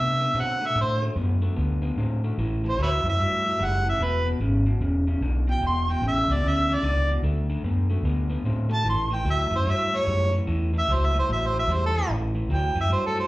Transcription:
Already playing: C3 D3 B3 E5
0.20 D3 B3
0.34 B2 D3 C4
0.40 F#5
0.61 D3 A3
0.66 E5
0.75 A2 D3 A3
0.81 C5
1.02 D3 A3
1.16 F#2 D3 B3
1.42 D3 A3
1.56 D2 D3 B3
1.82 D3 B3
1.97 A2 D3 C4
2.24 D3 A3
2.38 A1 A2 E3
2.64 A2 E3
2.69 C5
2.78 D2 A2 F#3
2.83 B4 C#5 E5
3.04 F#2 A2 E3
3.09 E5
3.19 G2 A2 F#3
3.44 A2 F#3
3.59 F#1 A2 G3
3.65 F#5
3.85 A2 E3
3.89 E5
3.99 E1 E2 B2
4.04 B4
4.26 E2 B2
4.40 G#1 E2 C#3
4.66 E2 B2
4.80 E1 E2 C#3
5.07 E2 C#3
5.21 B1 E2 D3
5.47 E2 B2 G5
5.61 E1 E2 B2
5.66 C6
5.89 E2 B2 G5
6.02 A1 E2 C#3
6.08 E5
6.27 C#2 E2 B2
6.33 D5
6.42 D2 E2 C#3
6.49 E5
6.68 E2 C#3
6.74 D5
6.83 C#2 E2 D3
7.09 E2 B2
7.22 D2 D3 A3
7.50 D3 A3
7.63 F#2 D3 B3
7.90 D3 A3
8.03 D2 D3 B3
8.30 D3 B3
8.44 A2 D3 C4
8.69 D3 A3
8.74 A5
8.85 A1 A2 E3
8.89 C6
9.10 A2 E3
9.15 G5
9.25 D2 A2 F#3
9.31 E5
9.51 F#2 A2 E3
9.56 C5
9.66 G2 A2 F#3
9.71 E5
9.92 A2 F#3
9.96 C#5
10.06 F#2 A2 G3
10.32 A2 E3
10.47 E2 A2 E3
10.73 A2 E3
10.79 E5
10.88 C#2 A2 F#3
10.93 C5
11.05 E5
11.14 A2 E3
11.19 C5
11.28 A1 A2 F#3
11.33 E5
11.46 C5
11.54 A2 F#3
11.59 E5
11.68 E2 A2 G3
11.73 C5
11.86 A4
11.94 A2 E3
12.09 A1 A2 E3
12.35 A2 E3
12.49 D2 A2 F#3
12.54 G5
12.75 F#2 A2 E3
12.81 E5
12.90 G2 A2 F#3 C5
13.06 A4
13.16 A2 F#3
13.20 C5

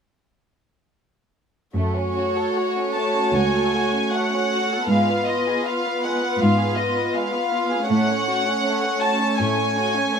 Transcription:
1.74 F#2 A3 F#4 C#5
1.97 C#4
2.16 F#4 C#5
2.36 A4
2.56 F#4
2.76 C#4
2.96 A3 A5
3.15 C#4
3.34 C#2 F#4 G#5
3.53 A4
3.74 F#4
3.93 C#4
4.12 A3 F#5
4.33 C#4
4.52 F#4
4.72 A4
4.89 G#2 G#3 B3 F4 B4 F5
5.09 B3
5.27 F4 D#5
5.46 G#4
5.64 F4 F5
5.83 B3
6.02 G#3 F#5
6.20 B3
6.40 G#2 F4 F5
6.58 G#4
6.77 F4 D#5
6.96 B3
7.14 G#3 F5
7.33 B3
7.52 F4
7.71 G#4
7.89 A2 A3 C#4 C#5 F#5
8.08 C#4
8.27 F#4
8.47 C#4
8.65 A3
8.83 C#4
9.01 F#4 A5
9.19 C#4
9.38 A2 A3 G#5
9.57 C#4
9.76 F#4
9.93 C#4
10.12 A3

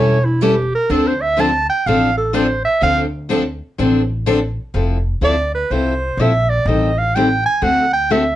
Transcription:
Already playing: E1 E3 G3 C#4 E4 A4 C#5
0.25 E4
0.42 E3 G3 C#4 E4 G4 A4
0.75 A#4
0.90 D2 D3 F3 C4 D4 A4
1.07 C5
1.22 E5
1.37 D3 F3 C4 D4 A4 A5
1.70 G5
1.86 A1 D3 F3 C4 D4 A4 F5
2.18 A4
2.33 D3 F3 C4 D4 A4 C5
2.65 E5
2.81 D2 D3 F3 C4 D4 A4 F5
3.29 D3 F3 C4 D4 A4
3.78 A1 D3 F3 C4 D4 A4
4.26 D3 F3 C4 D4 A4
4.74 F1 F3 C4 E4 A4
5.21 D2 F3 C4 E4 A4 D5
5.55 B4
5.70 C2 F3 C4 E4 A4 C5
6.17 A#1 F3 C4 E4 A4 E5
6.49 D5
6.65 A1 D#3 G3 C4 G4 A4 D#5
6.99 F5
7.15 D#3 G3 C4 G4 A4 G5
7.45 G#5
7.61 D2 D3 A3 C4 F#4 A4 F#5
7.93 G5
8.10 D3 A3 C4 F#4 A4 E5

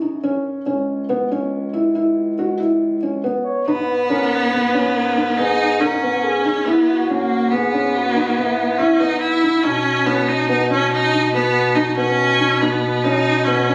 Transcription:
Already playing: F#2
0.02 D#4
0.23 C#4
0.66 C#2 C#4
1.09 B3
1.31 C#4
1.73 E4
1.95 E4
2.39 F#4
2.60 E4
3.03 C#4
3.24 B3
3.43 C#5
3.67 G#2 B3 D#4 B4
4.10 C#4 A#4
4.52 B3 B4
4.74 C#4
4.95 A#4
5.17 D#4
5.38 B3 D#4 G#4
5.80 C#4 D#4 A#4
6.03 B3
6.24 G#4
6.45 D#4
6.66 G#2 B3 E4
6.89 F#4
7.09 A#3 C#4
7.51 B3 G#4
7.74 C#4
7.96 F#4
8.16 D#4
8.37 B3 E4
8.78 C#4 E4
9.00 B3 D#4
9.20 E4
9.43 D#4
9.63 B2 C#4 D#4
10.06 B3 C#4
10.29 D#4
10.49 B3 D#4
10.70 C#4
10.92 D#4
11.13 D#4
11.34 B3
11.75 D#4
11.97 B3 C#4
12.39 D#4
12.61 B3 D#4
13.04 C#4 D#4
13.45 B3 C#4
13.69 C#4

